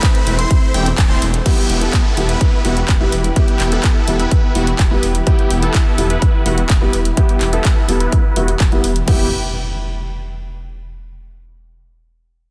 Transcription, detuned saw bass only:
0.27 0.45 E1 medium
0.74 0.92 E1 medium
0.98 1.16 D1 medium
1.22 1.40 E1 loud
1.70 1.88 E1 loud
2.17 2.35 E1 medium
2.65 2.83 E1 medium
2.89 3.07 E1 medium
3.12 3.30 E1 medium
3.60 3.78 E1 loud
4.08 4.26 E1 medium
4.55 4.73 E1 medium
4.79 4.97 E1 medium
5.03 5.21 E1 medium
5.50 5.68 E1 loud
5.98 6.16 E1 medium
6.46 6.64 E1 medium
6.70 6.88 E1 medium
6.93 7.11 E1 medium
7.41 7.59 E1 loud
7.89 8.07 E1 medium
8.36 8.54 E1 medium
8.60 8.78 E1 medium
8.84 9.02 E1 medium
9.08 9.30 E1 medium

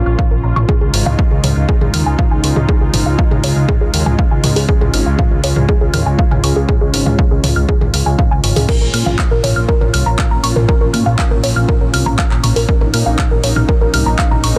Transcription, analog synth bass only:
0.06 0.16 A#1 medium
0.31 0.41 A#1 medium
0.44 0.53 A#1 loud
0.56 0.66 A#1 medium
0.81 0.91 C#2 medium
0.94 1.03 G#1 loud
1.06 1.16 C#2 medium
1.31 1.41 C#2 medium
1.44 1.53 C#2 loud
1.56 1.66 C#2 medium
1.81 1.91 C#2 medium
1.94 2.03 D#2 medium
2.06 2.16 C#2 medium
2.31 2.41 C#2 medium
2.44 2.53 C#2 loud
2.56 2.66 C#2 medium
2.81 2.91 C#2 medium
2.94 3.03 G#1 loud
3.06 3.16 C#2 medium
3.31 3.41 C#2 medium
3.44 3.53 C#2 medium
3.56 3.66 C#2 medium
3.81 3.91 C#2 medium
3.94 4.03 D#2 medium
4.06 4.16 C#2 medium
4.31 4.41 C#2 medium
4.44 4.53 C#2 loud
4.56 4.66 C#2 medium
4.81 4.91 C#2 medium
4.94 5.03 G#1 loud
5.06 5.16 C#2 medium
5.31 5.41 C#2 medium
5.44 5.53 C#2 loud
5.56 5.66 C#2 medium
5.81 5.91 C#2 medium
5.94 6.03 D#2 loud
6.06 6.16 C#2 medium
6.31 6.41 C#2 medium
6.44 6.53 C#2 loud
6.56 6.66 C#2 medium
6.81 6.91 C#2 medium
6.94 7.03 G#1 loud
7.06 7.16 C#2 medium
7.31 7.41 C#2 medium
7.44 7.53 C#2 loud
7.56 7.66 C#2 medium
7.81 7.91 C#2 medium
7.94 8.03 C#2 medium
8.06 8.16 C#2 medium
8.31 8.41 C#2 medium
8.44 8.53 G#1 loud
8.56 8.66 C#2 medium
8.81 8.91 A#1 medium
8.94 9.03 A#2 loud
9.06 9.16 A#1 medium
9.31 9.41 A#1 medium
9.44 9.53 A#1 loud
9.56 9.66 A#1 medium
9.81 9.91 A#1 medium
9.94 10.03 C2 medium
10.06 10.16 A#1 medium
10.31 10.41 A#1 medium
10.44 10.53 A#1 loud
10.56 10.66 A#1 medium
10.81 10.91 A#1 medium
10.94 11.03 A#2 loud
11.06 11.16 A#1 medium
11.31 11.41 A#1 medium
11.44 11.53 A#1 loud
11.56 11.66 A#1 medium
11.81 11.91 A#1 medium
11.94 12.03 C2 medium
12.06 12.16 A#1 medium
12.31 12.41 A#1 medium
12.44 12.53 A#1 loud
12.56 12.66 A#1 medium
12.81 12.91 A#1 medium
12.94 13.03 A#2 loud
13.06 13.16 A#1 medium
13.31 13.41 A#1 medium
13.44 13.53 A#1 loud
13.56 13.66 A#1 medium
13.81 13.91 A#1 medium
13.94 14.03 C2 loud
14.06 14.16 A#1 medium
14.31 14.41 A#1 medium
14.44 14.53 A#1 loud

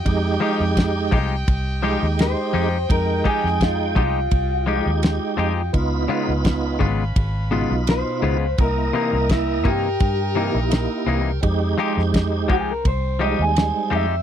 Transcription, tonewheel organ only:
0.05 1.18 G#3 loud
0.05 1.19 D#4 medium
0.05 1.19 G4 loud
1.82 2.68 G#3 medium
1.82 2.69 D#4 medium
1.82 2.69 G4 medium
2.89 4.02 G#3 medium
2.89 4.03 D#4 medium
2.89 4.03 G5 medium
4.66 5.53 G#3 medium
4.66 5.53 D#4 medium
4.66 5.53 G4 medium
5.73 6.87 B3 loud
5.73 6.87 D#4 medium
5.73 6.87 F4 loud
7.51 8.37 B2 medium
7.51 8.37 D#4 medium
7.51 8.37 F4 medium
8.58 9.71 A#3 medium
8.58 9.72 E4 medium
8.58 9.72 D#5 medium
10.36 11.22 A#3 medium
10.36 11.22 D#4 medium
10.36 11.22 E4 medium
11.42 12.56 G#3 loud
11.42 12.56 D#4 medium
11.42 12.56 G4 loud
13.20 14.06 G3 medium
13.20 14.06 G#3 medium
13.20 14.06 D#4 medium

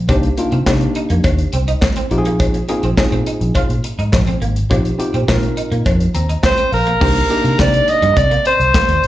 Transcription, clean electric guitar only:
0.09 0.21 C4 medium
0.38 muted clean electric guitar stroke soft
0.52 0.64 C4 medium
0.67 muted clean electric guitar stroke soft
0.96 1.08 D#4 medium
1.10 1.22 A#3 medium
1.25 muted clean electric guitar stroke soft
1.54 1.65 C4 medium
1.68 1.80 D#4 medium
1.97 2.09 C4 medium
2.11 muted clean electric guitar stroke soft
2.26 2.38 A#3 medium
2.55 muted clean electric guitar stroke soft
2.69 2.81 A#3 medium
2.84 2.95 C4 medium
2.98 muted clean electric guitar stroke soft
3.12 3.24 C4 medium
3.27 3.39 D#4 medium
3.56 3.67 F4 medium
3.85 muted clean electric guitar stroke soft
3.99 4.11 D#4 medium
4.13 muted clean electric guitar stroke soft
4.28 4.39 C4 medium
4.42 4.54 A#3 medium
4.71 4.83 A#3 medium
5.00 muted clean electric guitar stroke soft
5.14 5.26 C4 medium
5.29 muted clean electric guitar stroke soft
5.57 5.69 D#4 medium
5.72 5.84 A#3 medium
5.86 muted clean electric guitar stroke soft
6.15 6.27 C4 medium
6.29 6.41 D#4 medium
6.58 6.70 C4 medium
6.73 muted clean electric guitar stroke soft
6.87 6.99 A#3 medium
7.01 7.13 C4 medium
7.30 7.42 A#3 medium
7.45 muted clean electric guitar stroke soft
7.59 7.71 C4 medium
7.88 muted clean electric guitar stroke soft
8.02 8.14 G3 medium
8.17 muted clean electric guitar stroke soft
8.31 8.43 A#3 medium
8.46 8.58 C4 medium
8.75 8.86 A#3 medium
8.89 muted clean electric guitar stroke soft

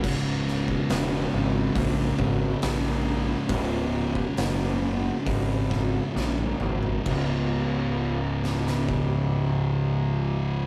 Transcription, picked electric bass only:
0.04 0.72 C#1 medium
0.90 1.24 E1 medium
1.33 1.67 G#1 medium
1.75 2.10 A#1 medium
2.18 2.53 G#1 medium
2.63 3.32 A#1 medium
3.49 4.19 C#1 medium
4.38 5.09 F#1 medium
5.26 5.98 G#1 medium
6.16 6.52 A#1 medium
6.60 6.97 G#1 medium
7.06 10.66 C#1 medium

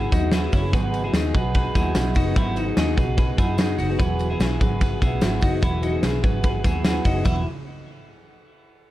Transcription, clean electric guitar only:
0.00 0.12 E4 medium
0.00 0.12 G#4 medium
0.13 0.33 D#4 medium
0.13 0.33 F#4 medium
0.33 0.52 E4 medium
0.33 0.53 G#4 medium
0.53 0.74 C#4 medium
0.53 0.73 E4 medium
0.74 1.02 G#4 medium
0.74 1.02 B4 loud
1.04 1.14 E4 medium
1.04 1.13 G#4 medium
1.15 1.35 D#4 medium
1.15 1.35 G#4 medium
1.35 1.55 G#4 medium
1.35 1.55 B4 medium
1.56 1.75 G#4 medium
1.56 1.76 B4 medium
1.76 2.14 E4 medium
1.76 2.14 G#4 medium
2.16 2.37 D#4 medium
2.16 2.36 F#4 medium
2.37 2.57 B3 medium
2.37 2.57 E4 loud
2.57 2.76 D#4 medium
2.57 2.77 F#4 medium
2.77 2.98 D#4 medium
2.77 2.97 G#4 medium
2.97 3.17 G#4 medium
2.97 3.16 B4 medium
3.18 3.37 G#4 medium
3.18 3.38 B4 medium
3.38 3.59 E4 medium
3.38 3.57 G#4 medium
3.58 3.78 D#4 medium
3.58 3.78 G#4 medium
3.79 4.00 D#4 medium
3.79 3.99 F#4 medium
3.99 4.28 G#4 medium
3.99 4.28 B4 loud
4.30 4.40 E4 medium
4.30 4.39 G#4 medium
4.41 4.60 E4 medium
4.41 4.60 G#4 medium
4.61 4.81 G#4 medium
4.61 4.80 B4 medium
4.81 5.01 G#4 medium
4.81 5.01 B4 medium
5.02 5.40 E4 medium
5.02 5.40 G#4 medium
5.42 5.63 D#4 medium
5.42 5.63 F#4 medium
5.63 5.82 B3 medium
5.63 5.83 E4 loud
5.83 6.03 D#4 medium
5.83 6.03 F#4 medium
6.03 6.23 E4 medium
6.03 6.24 G#4 medium
6.24 6.44 G#4 medium
6.24 6.43 B4 medium
6.44 6.64 G#4 medium
6.44 6.65 B4 medium
6.65 6.84 E4 medium
6.65 6.84 G#4 medium
6.85 7.06 E4 medium
6.85 7.05 G#4 medium
7.05 7.26 D#4 medium
7.05 7.25 F#4 medium
7.25 7.44 E4 medium

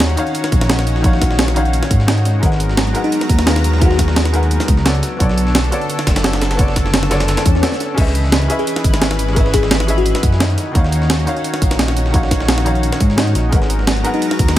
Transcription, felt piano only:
0.00 0.14 D#3 loud
0.00 0.15 D#4 medium
0.00 0.16 F#4 medium
0.00 0.16 C#5 medium
0.00 0.17 F5 loud
0.16 0.26 D#3 loud
0.16 0.26 D#4 medium
0.16 0.27 F#4 medium
0.16 0.27 C#5 medium
0.16 0.28 F5 loud
0.68 0.99 D#3 medium
0.68 1.01 D#4 medium
0.68 1.02 F#4 medium
0.68 1.03 C#5 medium
0.68 1.03 D#5 medium
1.01 1.52 D#3 loud
1.01 1.53 D#4 medium
1.01 1.54 F#4 medium
1.06 1.55 C#5 medium
1.06 1.56 F5 loud
1.54 1.64 D#3 loud
1.54 1.65 D#4 medium
1.54 1.65 F#4 medium
1.54 1.66 C#5 medium
1.54 1.66 F5 loud
2.06 2.40 D#3 medium
2.06 2.39 D#4 medium
2.06 2.41 F#4 medium
2.06 2.41 C#5 medium
2.06 2.42 D#5 medium
2.39 2.91 G#3 loud
2.39 2.92 D#4 medium
2.39 2.93 A#4 medium
2.44 2.93 B4 medium
2.44 2.94 F#5 loud
2.93 3.03 G#3 loud
2.93 3.04 D#4 medium
2.93 3.04 A#4 medium
2.93 3.04 B4 medium
2.93 3.05 F#5 loud
3.45 3.77 G#3 medium
3.45 3.78 D#4 medium
3.45 3.80 A#4 medium
3.45 3.80 B4 medium
3.45 3.80 F5 medium
3.78 4.30 G#3 loud
3.78 4.31 D#4 medium
3.78 4.32 A#4 medium
3.83 4.33 B4 medium
3.83 4.33 F#5 loud
4.32 4.42 G#3 loud
4.32 4.43 D#4 medium
4.32 4.43 A#4 medium
4.32 4.43 B4 medium
4.32 4.44 F#5 loud
4.84 5.15 B3 medium
4.84 5.17 F#4 medium
4.84 5.18 A4 medium
4.84 5.19 C#5 medium
4.84 5.19 D5 medium
5.17 5.69 B3 loud
5.17 5.70 F#4 medium
5.17 5.70 A4 medium
5.22 5.71 C#5 medium
5.22 5.72 D5 loud
5.70 5.81 B3 loud
5.70 5.81 F#4 medium
5.70 5.82 A4 medium
5.70 5.82 C#5 medium
5.70 5.82 D5 loud
6.22 6.54 B3 medium
6.22 6.56 F#4 medium
6.22 6.57 A4 medium
6.22 6.57 C#5 medium
6.22 6.58 D5 medium
6.55 7.07 B3 loud
6.55 7.08 F#4 medium
6.55 7.09 A4 medium
6.61 7.10 C#5 medium
6.61 7.11 D5 loud
7.09 7.19 B3 loud
7.09 7.20 F#4 medium
7.09 7.20 A4 medium
7.09 7.21 C#5 medium
7.09 7.21 D5 loud
7.61 7.95 B3 medium
7.61 7.95 F#4 medium
7.61 7.96 A4 medium
7.61 7.96 C#5 medium
7.61 7.97 D5 medium
7.94 8.46 C#4 loud
7.94 8.47 G#4 medium
7.94 8.48 B4 medium
8.00 8.49 D#5 medium
8.00 8.50 E5 loud
8.48 8.58 C#4 loud
8.48 8.59 G#4 medium
8.48 8.59 B4 medium
8.48 8.60 D#5 medium
8.48 8.60 E5 loud
9.00 9.31 C#4 medium
9.00 9.33 G#4 medium
9.00 9.34 B4 medium
9.00 9.35 D#5 medium
9.00 9.35 E5 medium
9.33 9.85 C#4 loud
9.33 9.86 G#4 medium
9.33 9.87 B4 medium
9.38 9.87 D#5 medium
9.38 9.88 E5 loud
9.87 9.97 C#4 loud
9.87 9.97 G#4 medium
9.87 9.98 B4 medium
9.87 9.98 D#5 medium
9.87 9.99 E5 loud
10.39 10.70 D#3 medium
10.39 10.72 D#4 medium
10.39 10.73 F#4 medium
10.39 10.74 C#5 medium
10.39 10.74 D#5 medium
10.72 11.23 D#3 loud
10.72 11.24 D#4 medium
10.72 11.25 F#4 medium
10.77 11.26 C#5 medium
10.77 11.27 F5 loud
11.25 11.36 D#3 loud
11.25 11.36 D#4 medium
11.25 11.36 F#4 medium
11.25 11.37 C#5 medium
11.25 11.37 F5 loud
11.78 12.09 D#3 medium
11.78 12.11 D#4 medium
11.78 12.12 F#4 medium
11.78 12.12 C#5 medium
11.78 12.13 D#5 medium
12.10 12.62 D#3 loud
12.10 12.63 D#4 medium
12.10 12.64 F#4 medium
12.16 12.65 C#5 medium
12.16 12.66 F5 loud
12.64 12.74 D#3 loud
12.64 12.75 D#4 medium
12.64 12.75 F#4 medium
12.64 12.76 C#5 medium
12.64 12.76 F5 loud
13.16 13.50 D#3 medium
13.16 13.49 D#4 medium
13.16 13.51 F#4 medium
13.16 13.51 C#5 medium
13.16 13.52 D#5 medium
13.49 14.01 G#3 loud
13.49 14.02 D#4 medium
13.49 14.03 A#4 medium
13.54 14.04 B4 medium
13.54 14.04 F#5 loud
14.03 14.13 G#3 loud
14.03 14.13 D#4 medium
14.03 14.14 A#4 loud
14.03 14.14 B4 medium
14.03 14.15 F#5 loud
14.55 14.59 G#3 medium
14.55 14.59 D#4 medium

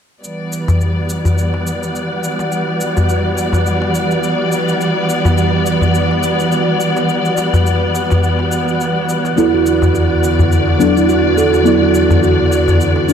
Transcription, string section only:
0.23 9.34 E3 medium
0.23 9.34 G3 medium
0.23 13.13 B3 medium
0.23 9.34 D5 medium
9.38 13.13 E2 medium
9.38 13.13 D3 medium
9.38 13.13 F#4 medium
9.38 13.13 D5 medium

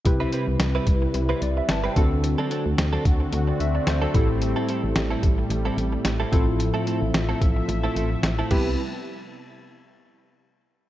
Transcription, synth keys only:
0.05 0.83 C3 medium
0.05 1.92 C4 medium
0.05 1.93 E4 medium
0.05 1.93 G4 medium
0.05 1.93 B4 medium
1.43 1.56 D5 medium
1.58 1.69 E5 medium
1.70 1.84 A5 medium
1.85 2.11 G5 medium
1.96 2.74 D3 medium
1.96 3.56 C4 medium
1.96 3.57 D4 medium
1.96 3.57 F#4 medium
1.96 3.31 A4 medium
3.48 3.60 D5 medium
3.61 3.74 E5 medium
3.76 3.87 D5 medium
3.88 4.02 C5 medium
4.03 4.15 A4 medium
4.14 4.92 A2 medium
4.14 6.28 C4 medium
4.14 6.29 E4 medium
4.14 6.29 G4 medium
4.14 6.30 A4 medium
6.32 7.11 A2 medium
6.32 8.46 C4 medium
6.32 8.47 E4 medium
6.32 8.47 F4 medium
6.32 8.48 A4 medium
8.51 8.76 C2 medium
8.51 8.76 C4 medium
8.51 8.76 E4 medium
8.51 8.76 G4 medium
8.51 8.76 B4 medium

